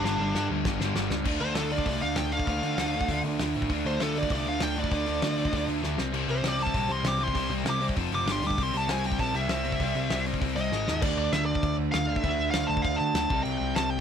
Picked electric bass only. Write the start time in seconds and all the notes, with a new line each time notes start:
0.05 G1
0.18 G1
0.35 G2
0.50 D2
0.65 G1
0.80 G1
0.95 G1
1.09 C#2
1.25 D2
1.41 D2
1.56 D2
1.86 C2
2.02 D2
2.17 D2
2.47 D2
2.63 D2
2.78 D2
3.08 D2
3.24 D2
3.40 D2
3.56 A2
3.70 D2
3.85 D2
4.01 D2
4.31 C2
4.47 D2
4.62 D2
4.92 D2
5.08 D2
5.24 D2
5.53 D2
5.68 D2
5.83 D2
5.99 C2
6.14 C2
6.28 C2
6.44 C2
6.75 A#1
6.89 C2
7.04 C2
7.35 C2
7.50 C2
7.64 C2
7.97 F1
8.11 F#1
8.26 G1
8.42 D2
8.58 C2
8.72 C2
8.88 C2
9.19 A#1
9.34 C2
9.49 C2
9.80 C2
9.96 C2
10.10 C2
10.42 C2
10.57 C2
10.72 G#1
10.88 D#2
11.02 D2
11.17 D2
11.33 D2
11.63 D2
11.78 D2
11.94 D2
12.24 D2
12.39 D2
12.54 D2
12.70 D2
12.84 D2
13.01 D3
13.14 D2
13.30 C2
13.46 C2
13.61 C2
13.76 C2